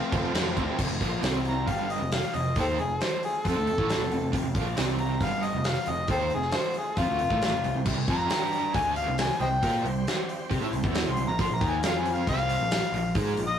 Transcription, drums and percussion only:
0.12 kick loud
0.12 crash medium
0.35 snare loud
0.35 crash medium
0.47 snare soft
0.57 kick medium
0.57 crash medium
0.79 kick loud
0.79 crash loud
1.01 kick loud
1.01 open hi-hat medium
1.23 snare loud
1.23 open hi-hat medium
1.45 open hi-hat medium
1.68 kick medium
1.68 open hi-hat medium
1.90 open hi-hat medium
2.12 snare loud
2.12 open hi-hat medium
2.34 open hi-hat medium
2.56 kick loud
2.56 open hi-hat medium
2.79 open hi-hat medium
3.01 snare loud
3.01 open hi-hat medium
3.23 open hi-hat medium
3.45 kick medium
3.45 open hi-hat medium
3.67 open hi-hat medium
3.78 kick loud
3.90 snare loud
3.90 open hi-hat medium
4.12 open hi-hat medium
4.33 kick loud
4.33 open hi-hat medium
4.55 kick loud
4.55 open hi-hat medium
4.77 snare loud
4.77 open hi-hat medium
4.99 open hi-hat medium
5.21 kick loud
5.21 open hi-hat medium
5.43 open hi-hat medium
5.64 snare loud
5.64 open hi-hat medium
5.86 open hi-hat medium
6.08 kick loud
6.08 open hi-hat medium
6.30 open hi-hat medium
6.41 snare soft
6.52 snare loud
6.52 open hi-hat medium
6.74 open hi-hat medium
6.97 kick loud
6.97 open hi-hat medium
7.19 open hi-hat medium
7.30 kick loud
7.42 snare loud
7.42 open hi-hat medium
7.64 open hi-hat medium
7.85 kick loud
7.85 crash loud
8.08 kick loud
8.08 open hi-hat medium
8.30 snare loud
8.30 open hi-hat medium
8.53 open hi-hat medium
8.74 kick loud
8.74 open hi-hat medium
8.96 open hi-hat medium
9.18 snare loud
9.18 open hi-hat medium
9.40 open hi-hat medium
9.63 kick loud
9.63 open hi-hat medium
9.86 open hi-hat medium
10.07 snare loud
10.07 open hi-hat medium
10.29 open hi-hat medium
10.51 kick medium
10.51 open hi-hat medium
10.73 open hi-hat medium
10.84 kick loud
10.95 snare loud
10.95 open hi-hat medium
11.17 open hi-hat medium
11.39 kick loud
11.39 open hi-hat medium
11.61 kick loud
11.61 open hi-hat medium
11.83 snare loud
11.83 open hi-hat medium
12.05 open hi-hat medium
12.27 kick medium
12.27 open hi-hat medium
12.49 open hi-hat medium
12.71 snare loud
12.71 open hi-hat medium
12.94 open hi-hat medium
13.15 kick loud
13.15 open hi-hat medium
13.37 open hi-hat medium

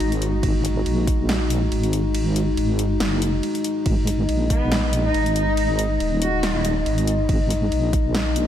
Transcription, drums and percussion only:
0.00 ride soft
0.12 closed hi-hat soft
0.22 closed hi-hat medium
0.43 kick loud
0.43 ride medium
0.65 closed hi-hat medium
0.86 ride soft
1.07 kick loud
1.07 closed hi-hat medium
1.29 snare loud
1.29 ride medium
1.50 closed hi-hat medium
1.72 ride medium
1.83 closed hi-hat soft
1.93 closed hi-hat medium
2.15 ride medium
2.36 closed hi-hat medium
2.57 ride soft
2.79 closed hi-hat medium
3.00 snare loud
3.00 ride medium
3.22 closed hi-hat medium
3.43 ride soft
3.55 closed hi-hat soft
3.64 closed hi-hat medium
3.86 kick loud
3.86 ride medium
4.07 closed hi-hat medium
4.29 ride soft
4.50 kick loud
4.50 closed hi-hat medium
4.72 snare loud
4.72 ride medium
4.93 closed hi-hat medium
5.14 ride soft
5.26 closed hi-hat soft
5.36 closed hi-hat medium
5.57 ride medium
5.79 closed hi-hat medium
6.00 ride soft
6.22 closed hi-hat medium
6.43 snare loud
6.43 ride medium
6.65 closed hi-hat medium
6.86 ride soft
6.98 closed hi-hat soft
7.07 closed hi-hat medium
7.29 kick loud
7.29 ride medium
7.50 closed hi-hat medium
7.72 ride soft
7.93 kick loud
7.93 closed hi-hat medium
8.15 snare loud
8.15 ride medium
8.36 closed hi-hat medium

